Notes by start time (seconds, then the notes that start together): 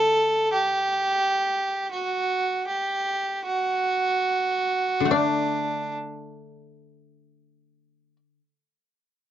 Already playing: D3 A4
0.53 G4
1.92 F#4
2.67 G4
3.46 F#4
5.00 D3
5.05 A3
5.11 D4 D5